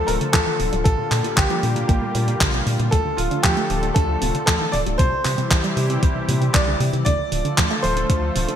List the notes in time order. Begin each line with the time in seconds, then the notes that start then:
Already playing: D3 F3 A3 F4 A4
0.07 D1 C3 A#4, open hi-hat
0.21 D3, closed hi-hat
0.33 D2 F3 A4, kick, clap, closed hi-hat
0.47 E3
0.60 D1 C3, open hi-hat
0.72 D1 G3, closed hi-hat
0.84 A#1 A#2 G3 A#3 G4 A4, kick, closed hi-hat
0.98 A#2
1.11 A#2, clap, open hi-hat
1.24 A#2, closed hi-hat
1.36 A#1 D3 G4, kick, clap, closed hi-hat
1.50 F3, closed hi-hat
1.63 A#2 D3, open hi-hat
1.76 A#2, closed hi-hat
1.88 A#1 A#3 G4, kick, closed hi-hat
2.02 A#2
2.15 A2 A#2, open hi-hat
2.28 A#2, closed hi-hat
2.41 A#1 D3, kick, clap, closed hi-hat
2.54 C3, closed hi-hat
2.67 A2 A#2, open hi-hat
2.80 A#2 E3, closed hi-hat
2.91 D2 D3 F3 A3 A4, kick, closed hi-hat
3.05 D2
3.17 D1 D3 F4, open hi-hat
3.31 D3, closed hi-hat
3.43 D2 F3 G4, kick, clap, closed hi-hat
3.57 A3, closed hi-hat
3.70 D1 F3, open hi-hat
3.83 D3, closed hi-hat
3.94 D2 D4 A4, kick, closed hi-hat
4.09 D2
4.22 D1 C3, open hi-hat
4.34 D3, closed hi-hat
4.46 D2 F3 A4, kick, clap, closed hi-hat
4.61 E3
4.72 D1 C3 D5, open hi-hat
4.86 D1 G3, closed hi-hat
4.98 C2 C3 E3 G3 E4 G4 C5, kick, closed hi-hat
5.12 C2
5.25 C3, clap, open hi-hat
5.38 C3, closed hi-hat
5.51 C2 E3, kick, clap, closed hi-hat
5.64 G3, closed hi-hat
5.77 C3 E3, open hi-hat
5.90 C3, closed hi-hat
6.03 C2 C4, kick, closed hi-hat
6.16 C2
6.29 A#2 C3, open hi-hat
6.41 C3, closed hi-hat
6.53 C2 E3 D5, kick, clap, closed hi-hat
6.67 D3
6.80 A#2 C3, open hi-hat
6.93 C3 E3, closed hi-hat
7.05 D2 D3 F3 A3 F4 A4 D5, kick, closed hi-hat
7.19 D2
7.32 D1 D3, open hi-hat
7.45 D3, closed hi-hat
7.58 D2 F3, kick, clap, closed hi-hat
7.71 A3, closed hi-hat
7.82 D1 F3 C5, open hi-hat
7.97 D3, closed hi-hat
8.09 D2 D4, kick, closed hi-hat
8.23 D2
8.35 D1 C3, open hi-hat
8.48 D3, closed hi-hat